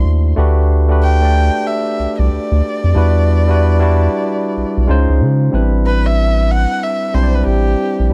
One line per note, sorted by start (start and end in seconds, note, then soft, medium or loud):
0.00 0.36 A3 medium
0.00 0.37 D4 medium
0.00 0.39 E4 medium
0.00 0.38 F#4 medium
0.00 0.38 C5 medium
0.00 0.38 D5 medium
0.05 0.34 D#2 medium
0.36 1.50 D2 loud
0.36 0.78 A3 medium
0.36 0.78 D4 medium
0.36 0.79 F#4 medium
0.36 0.79 G4 medium
0.36 0.79 B4 medium
0.89 1.14 A3 medium
0.89 1.14 D4 medium
0.89 1.15 F#4 medium
0.89 1.15 G4 medium
0.89 1.15 B4 medium
1.03 1.68 G5 loud
1.21 2.25 A3 medium
1.21 2.25 D4 medium
1.21 2.26 G4 medium
1.21 2.27 D5 medium
1.67 2.21 E5 medium
1.99 2.07 C2 medium
2.19 2.30 C2 medium
2.19 4.89 D5 medium
2.31 2.39 D2 soft
2.52 2.62 D2 medium
2.84 2.94 F2 medium
2.94 4.08 E2 loud
2.94 3.36 G3 medium
2.94 3.36 D4 medium
2.94 3.37 E4 medium
2.94 3.37 F#4 medium
2.94 3.38 B4 medium
3.47 3.72 G3 medium
3.47 3.73 D4 medium
3.47 3.73 E4 medium
3.47 3.74 F#4 medium
3.47 3.74 B4 medium
3.79 4.83 G3 medium
3.79 4.83 D4 medium
3.79 4.83 E4 medium
3.79 4.84 F#4 medium
3.79 4.84 D5 medium
4.57 4.65 B1 soft
4.77 4.88 B1 medium
4.87 5.07 C#2 medium
4.87 5.44 G#3 medium
4.87 5.44 C#4 medium
4.87 5.45 D#4 medium
4.87 5.45 F4 medium
4.87 5.45 C5 loud
5.10 5.22 C#2 medium
5.21 5.50 C#3 medium
5.52 6.66 A1 loud
5.52 6.60 G3 medium
5.52 6.61 C4 medium
5.52 6.61 D4 medium
5.52 6.61 E4 medium
5.52 6.62 B4 medium
5.87 6.07 B4 medium
6.06 6.53 E5 medium
6.51 6.85 F#5 loud
6.83 7.16 E5 medium
7.14 7.43 B1 medium
7.14 7.97 G3 medium
7.14 7.97 C4 medium
7.14 7.98 D4 medium
7.14 7.98 E4 medium
7.14 7.36 C5 medium
7.14 7.23 C5 medium
7.23 8.02 D5 medium
7.35 7.46 B4 medium
7.47 7.75 A1 medium
7.47 8.07 G4 medium
8.00 8.10 A#1 medium
8.10 8.13 G3 medium
8.10 8.13 B3 soft